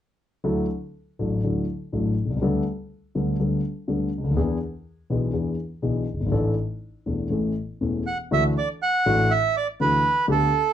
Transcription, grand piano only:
0.44 0.65 D2 medium
0.44 0.65 D3 medium
0.44 0.65 F#3 soft
0.44 0.65 D4 soft
0.44 0.65 E4 soft
0.44 0.65 A4 medium
1.19 1.40 A1 soft
1.19 1.39 A2 soft
1.19 1.39 F#3 soft
1.19 1.39 D4 soft
1.19 1.40 E4 soft
1.19 1.40 A4 soft
1.43 1.64 D2 soft
1.43 1.64 D3 soft
1.43 1.64 F#3 soft
1.43 1.64 D4 soft
1.43 1.64 E4 soft
1.43 1.64 A4 soft
1.92 2.13 A1 soft
1.92 2.13 A2 soft
1.92 2.13 F#3 soft
1.92 2.13 D4 soft
1.92 2.13 E4 soft
1.92 2.13 A4 soft
2.25 2.30 B1 soft
2.30 2.36 C2 soft
2.36 2.42 C#2 soft
2.42 2.62 D2 medium
2.42 2.62 D3 medium
2.42 2.62 G3 soft
2.42 2.62 B3 soft
2.42 2.62 D4 soft
2.42 2.62 A4 medium
3.15 3.35 D2 soft
3.15 3.35 D3 soft
3.15 3.35 G3 soft
3.15 3.35 B3 soft
3.15 3.35 D4 soft
3.15 3.35 A4 soft
3.39 3.60 D2 soft
3.39 3.60 D3 soft
3.39 3.60 G3 soft
3.39 3.60 B3 soft
3.39 3.60 D4 soft
3.39 3.60 A4 soft
3.88 4.08 D2 soft
3.88 4.08 D3 soft
3.88 4.08 G3 soft
3.88 4.08 B3 soft
3.88 4.08 D4 soft
3.88 4.08 A4 soft
4.18 4.24 C#2 soft
4.24 4.30 D2 soft
4.31 4.37 D#2 medium
4.36 4.57 E2 medium
4.36 4.57 E3 medium
4.36 4.57 B3 soft
4.36 4.57 D4 soft
4.36 4.57 G#4 medium
5.10 5.30 B1 soft
5.10 5.30 B2 soft
5.10 5.30 E3 soft
5.10 5.30 B3 soft
5.10 5.31 D4 soft
5.10 5.30 G#4 soft
5.33 5.54 E2 soft
5.33 5.54 E3 soft
5.33 5.54 B3 soft
5.33 5.54 D4 soft
5.33 5.54 G#4 soft
5.82 6.04 B1 soft
5.82 6.03 B2 soft
5.82 6.03 E3 soft
5.82 6.04 B3 soft
5.82 6.04 D4 soft
5.82 6.04 G#4 soft
6.13 6.20 F#1 soft
6.20 6.26 G1 soft
6.26 6.32 G#1 medium
6.32 6.53 A1 medium
6.32 6.53 A2 medium
6.32 6.53 E3 medium
6.32 6.53 A3 soft
6.32 6.53 D4 soft
6.32 6.53 A4 medium
7.06 7.27 E1 soft
7.06 7.27 E2 soft
7.06 7.27 E3 soft
7.06 7.27 A3 soft
7.06 7.27 D4 soft
7.06 7.27 A4 soft
7.30 7.52 A1 soft
7.30 7.52 A2 soft
7.30 7.51 E3 soft
7.30 7.52 A3 soft
7.30 7.52 C#4 soft
7.30 7.52 A4 soft
7.81 8.02 E1 soft
7.81 8.02 E2 soft
7.81 8.02 E3 soft
7.81 8.02 A3 soft
7.81 8.02 C#4 soft
7.81 8.02 A4 soft
8.31 8.52 D2 medium
8.31 8.52 D3 medium
8.31 8.52 E3 medium
8.31 8.52 A3 medium
8.31 8.52 D4 medium
8.31 8.52 F#4 medium
9.06 9.27 A1 medium
9.06 9.27 A2 medium
9.06 9.26 E3 medium
9.06 9.27 A3 medium
9.06 9.26 D4 soft
9.06 9.27 F#4 medium
9.80 10.01 D2 soft
9.80 10.00 D3 soft
9.80 10.00 E3 soft
9.80 10.00 A3 soft
9.80 10.00 D4 soft
9.80 10.00 F#4 soft
10.28 10.49 D2 medium
10.28 10.49 D3 medium
10.28 10.49 A3 medium
10.28 10.49 B3 medium
10.28 10.49 G4 medium

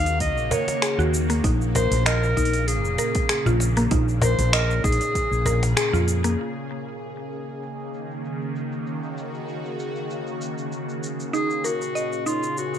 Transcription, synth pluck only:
0.51 0.61 A#4 medium
0.82 0.98 G#4 loud
0.99 1.12 F#4 medium
1.30 1.43 A#3 loud
1.44 1.60 D#4 medium
1.75 1.85 A#4 medium
2.06 2.35 D#5 medium
2.37 2.53 D#4 medium
2.99 3.08 A#4 medium
3.29 3.45 G#4 loud
3.46 3.60 F4 medium
3.77 3.90 A#3 loud
3.91 4.07 D#4 medium
4.22 4.32 A#4 medium
4.53 4.83 D#5 medium
4.84 5.00 D#4 medium
5.46 5.55 A#4 medium
5.77 5.93 G#4 loud
5.93 6.07 F4 medium
6.24 6.37 A#3 loud
11.33 11.49 D#4 medium
11.64 11.74 A#4 medium
11.95 12.25 D#5 medium
12.26 12.42 D#4 medium

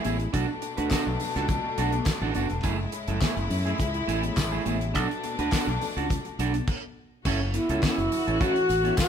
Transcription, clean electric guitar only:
0.05 0.17 A3 medium
0.05 0.17 E4 medium
0.05 0.17 G#4 medium
0.20 muted clean electric guitar stroke soft
0.33 0.49 D4 medium
0.33 0.48 F#4 medium
0.33 0.47 A4 medium
0.49 muted clean electric guitar stroke soft
0.62 muted clean electric guitar stroke soft
0.77 0.89 D4 medium
0.77 0.88 F#4 medium
0.77 0.88 B4 medium
0.92 1.07 D4 medium
0.92 1.06 F#4 medium
0.92 1.05 A4 medium
1.07 muted clean electric guitar stroke soft
1.20 muted clean electric guitar stroke soft
1.36 1.47 D4 soft
1.36 1.47 F#4 medium
1.36 1.46 A4 medium
1.64 muted clean electric guitar stroke soft
1.78 1.93 D4 medium
1.78 1.92 F#4 medium
1.78 1.92 A4 medium
1.93 muted clean electric guitar stroke soft
2.06 muted clean electric guitar stroke soft
2.22 2.34 D4 medium
2.22 2.35 F#4 medium
2.22 2.35 A4 loud
2.35 2.47 D4 medium
2.35 2.48 F#4 medium
2.35 2.48 A4 medium
2.50 muted clean electric guitar stroke soft
2.63 2.79 A3 medium
2.63 2.78 E4 medium
2.63 2.78 G#4 medium
2.79 muted clean electric guitar stroke medium
2.92 muted clean electric guitar stroke soft
3.08 3.19 A3 medium
3.08 3.19 E4 medium
3.08 3.19 A4 medium
3.22 3.37 A3 medium
3.22 3.36 E4 medium
3.22 3.36 G#4 medium
3.37 muted clean electric guitar stroke soft
3.50 muted clean electric guitar stroke soft
3.65 3.77 A3 medium
3.65 3.77 E4 medium
3.65 3.76 G#4 medium
3.94 muted clean electric guitar stroke soft
4.08 4.23 A3 medium
4.08 4.22 E4 medium
4.08 4.22 G#4 medium
4.23 muted clean electric guitar stroke soft
4.37 muted clean electric guitar stroke soft
4.52 4.64 A3 medium
4.52 4.65 E4 medium
4.52 4.65 G#4 medium
4.65 4.78 A3 medium
4.65 4.78 E4 medium
4.65 4.78 G#4 medium
4.94 5.10 D4 medium
4.94 5.10 F#4 medium
4.94 5.09 A4 loud
5.10 muted clean electric guitar stroke soft
5.24 muted clean electric guitar stroke soft
5.39 5.50 D4 medium
5.39 5.50 F#4 medium
5.39 5.49 B4 medium
5.53 5.68 D4 medium
5.53 5.68 F#4 medium
5.53 5.68 A4 medium
5.69 muted clean electric guitar stroke medium
5.83 muted clean electric guitar stroke soft
5.97 6.08 D4 medium
5.97 6.07 F#4 medium
5.97 6.07 A4 medium
6.26 muted clean electric guitar stroke soft
6.39 6.54 D4 medium
6.39 6.55 F#4 medium
6.39 6.54 A4 loud
6.55 muted clean electric guitar stroke soft
7.26 7.41 C#4 medium
7.26 7.41 E4 loud
7.26 7.40 A4 loud
7.42 muted clean electric guitar stroke soft
7.54 muted clean electric guitar stroke soft
7.70 7.81 C#4 medium
7.70 7.80 E4 medium
7.70 7.80 A4 medium
7.83 7.98 C#4 medium
7.83 7.98 E4 medium
7.83 7.97 A4 medium
7.98 muted clean electric guitar stroke soft
8.12 muted clean electric guitar stroke soft
8.27 8.38 C#4 medium
8.27 8.38 E4 medium
8.27 8.37 A4 medium
8.40 8.55 C#4 loud
8.40 8.55 E4 loud
8.40 8.54 A4 loud
8.55 muted clean electric guitar stroke soft
8.69 muted clean electric guitar stroke soft
8.84 8.95 C#4 medium
8.84 8.95 E4 medium
8.84 8.95 A4 medium
8.98 muted clean electric guitar stroke soft

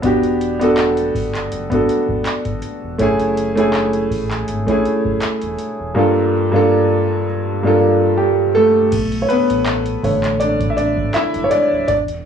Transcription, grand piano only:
0.02 0.39 B3 medium
0.02 0.40 D4 medium
0.02 0.40 F#4 medium
0.06 0.41 G4 medium
0.59 1.32 B3 medium
0.59 1.32 D4 medium
0.59 1.33 F#4 medium
0.63 1.34 A4 medium
1.70 2.54 B3 medium
1.70 2.55 D4 medium
1.70 2.55 F#4 medium
1.74 2.56 A4 medium
2.98 3.35 A3 medium
2.98 3.36 C#4 medium
2.98 3.36 E4 medium
3.02 3.37 G#4 loud
3.55 4.28 A3 medium
3.55 4.29 C#4 medium
3.55 4.29 E4 medium
3.60 4.30 G#4 medium
4.66 5.50 A3 medium
4.66 5.51 C#4 medium
4.66 5.52 E4 medium
4.71 5.53 G#4 medium
5.95 6.31 G2 medium
5.95 6.32 A#3 medium
5.95 6.32 D4 medium
5.95 6.33 F4 medium
5.99 6.34 A4 medium
6.52 7.24 G2 medium
6.52 7.25 A#3 medium
6.52 7.25 D4 medium
6.52 7.26 F4 medium
6.56 7.26 A4 loud
7.63 8.47 G2 medium
7.63 8.47 A#3 medium
7.63 8.48 D4 medium
7.63 8.48 F4 medium
7.67 8.49 A4 medium
8.18 8.28 G3 medium
8.18 8.26 G4 medium
8.55 9.20 A3 medium
8.55 9.19 A4 loud
9.22 9.29 C#5 medium
9.29 10.37 B3 medium
9.29 10.43 B4 medium
10.03 11.10 D3 medium
10.03 11.11 A3 medium
10.03 11.11 C#5 medium
10.40 10.48 D4 medium
10.40 10.47 D5 loud
10.70 10.77 E5 medium
10.77 11.13 D4 medium
10.77 11.15 D5 loud
11.14 11.44 E4 medium
11.14 11.46 E5 loud
11.44 11.51 C#5 medium
11.51 11.87 D4 medium
11.51 11.86 D5 loud
11.88 11.98 D4 medium
11.88 11.96 D5 loud

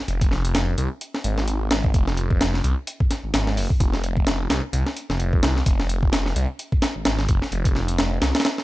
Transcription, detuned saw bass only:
0.08 0.75 F1 loud
0.78 0.88 C2 loud
1.24 1.91 G#1 loud
1.94 2.61 F1 loud
2.64 2.74 C2 loud
3.23 3.32 G#1 soft
3.34 3.58 G#1 medium
3.57 3.67 F1 loud
3.80 4.47 F1 loud
4.50 4.60 C2 loud
4.73 4.84 C2 loud
5.10 5.40 F1 medium
5.43 5.62 C2 loud
5.66 6.33 F1 loud
6.36 6.46 C2 loud
6.96 7.04 G#1 soft
7.05 7.30 G#1 medium
7.29 7.39 F1 loud
7.52 8.19 F1 loud
8.22 8.32 C2 loud

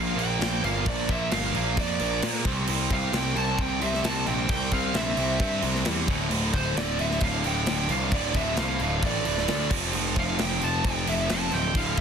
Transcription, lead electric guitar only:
0.00 0.19 F5 loud
0.19 0.60 G5 loud
0.65 0.87 F5 medium
0.88 1.10 D5 loud
1.11 1.32 E5 loud
1.32 1.79 F5 loud
1.79 2.42 D5 medium
2.93 3.15 F5 loud
3.16 3.37 G5 loud
3.37 3.60 A5 loud
3.61 3.83 G5 loud
3.82 4.03 E5 medium
4.06 4.26 A5 loud
4.27 4.48 G5 medium
4.50 4.73 G5 loud
4.73 4.94 F5 loud
4.96 5.59 E5 medium
6.54 6.75 C5 loud
6.76 7.00 D5 medium
7.00 7.21 E5 medium
7.23 7.43 F5 loud
7.45 7.91 G5 loud
7.91 8.12 F5 loud
8.13 8.34 D5 loud
8.36 8.57 E5 loud
8.59 9.00 F5 loud
9.05 9.68 D5 medium
10.19 10.41 F5 loud
10.41 10.61 G5 loud
10.64 10.85 A5 loud
10.85 11.06 G5 loud
11.08 11.31 E5 loud
11.32 11.52 A5 loud
11.54 11.76 G5 loud
11.77 11.97 F5 medium

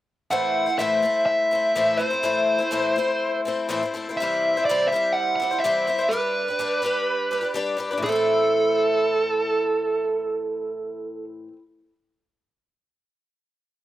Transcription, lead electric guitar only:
0.31 0.76 F#5 loud
0.79 1.24 E5 loud
1.26 2.02 E5 medium
1.97 3.40 C5 medium
4.17 4.63 E5 medium
4.65 4.87 D5 medium
4.88 5.14 E5 medium
5.13 5.35 F#5 loud
5.36 5.60 F#5 medium
5.59 6.11 E5 medium
6.09 7.50 B4 medium
8.04 11.24 A4 medium

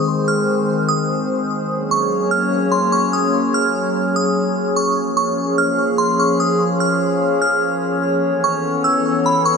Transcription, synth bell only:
0.28 0.85 F6 medium
0.89 1.66 D#6 medium
1.91 2.29 C#6 medium
2.31 2.70 F6 medium
2.72 2.91 C6 medium
2.92 3.12 C#6 medium
3.13 3.33 D#6 medium
3.54 4.12 F6 medium
4.16 4.73 D#6 medium
4.76 4.96 C#6 medium
5.17 5.55 C#6 medium
5.58 5.96 F6 medium
5.98 6.18 C6 medium
6.20 6.39 C#6 medium
6.40 6.59 D#6 medium
6.80 7.38 F6 medium
7.42 8.19 F6 medium
8.44 8.82 C#6 medium
8.84 9.23 E6 medium
9.26 9.45 B5 medium
9.46 9.57 C#6 medium

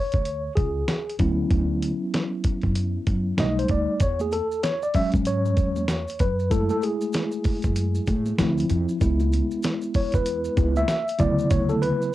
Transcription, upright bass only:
0.14 0.47 D2 medium
0.57 0.81 C#2 medium
1.20 1.43 D2 loud
1.51 1.89 D2 loud
2.64 2.96 F#2 medium
3.07 3.31 F#2 medium
3.38 3.62 B1 loud
3.69 3.84 D2 medium
4.01 4.39 E2 loud
5.14 5.57 G#2 medium
5.57 6.04 E2 loud
6.20 6.67 F#2 medium
7.65 7.97 F#2 medium
8.08 8.31 A2 loud
8.39 8.62 D2 loud
8.70 8.84 F2 loud
9.01 9.39 C#2 loud
10.14 10.46 E2 medium
10.57 10.81 C#2 loud
11.20 11.43 D2 loud
11.51 11.89 D2 loud

